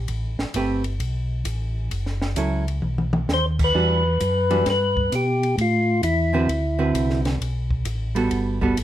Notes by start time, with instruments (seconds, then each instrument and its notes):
0.08 tonewheel organ A1, kick, ride
0.39 tonewheel organ A1, snare
0.54 tonewheel organ G1, hollow-body jazz guitar A3 C4 G4 B4, kick, hi-hat pedal, ride
0.84 ride
1.00 tonewheel organ B1, kick, ride
1.45 tonewheel organ A1, kick, hi-hat pedal, ride
1.91 tonewheel organ F#1, kick, ride
2.06 snare
2.22 snare
2.36 tonewheel organ C#2, hollow-body jazz guitar F#3 C#4 E4 A4, kick, hi-hat pedal, ride
2.68 ride
2.82 tonewheel organ B1, mid tom
2.98 mid tom
3.13 mid tom
3.28 tonewheel organ D#2, snare, hi-hat pedal
3.34 tonewheel organ C5
3.59 kick, crash
3.64 tonewheel organ B4
3.74 tonewheel organ E2, hollow-body jazz guitar E3 G3 D4 F#4, kick
4.20 tonewheel organ F#2, kick, hi-hat pedal, ride
4.50 hollow-body jazz guitar E3 G3 D4 F#4, ride
4.66 tonewheel organ G2, kick, snare, ride
4.70 tonewheel organ B4
4.97 kick
5.12 tonewheel organ B2 G4, kick, hi-hat pedal, ride
5.43 ride
5.57 tonewheel organ A2 F4, kick, ride
6.03 tonewheel organ E2 E4, kick, hi-hat pedal, ride
6.33 hollow-body jazz guitar D3 C4 F#4 B4
6.49 tonewheel organ D2, kick, ride
6.79 hollow-body jazz guitar D3 C4 F#4 B4
6.94 tonewheel organ C2, kick, hi-hat pedal, ride
7.10 snare
7.25 snare, ride
7.40 tonewheel organ B1, kick, ride
7.71 kick
7.85 tonewheel organ A1, kick, hi-hat pedal, ride
8.15 hollow-body jazz guitar G3 B3 F#4 A4, ride
8.31 tonewheel organ G1, kick, ride
8.61 hollow-body jazz guitar G3 B3 F#4 A4, kick
8.77 tonewheel organ G#1, kick, hi-hat pedal, ride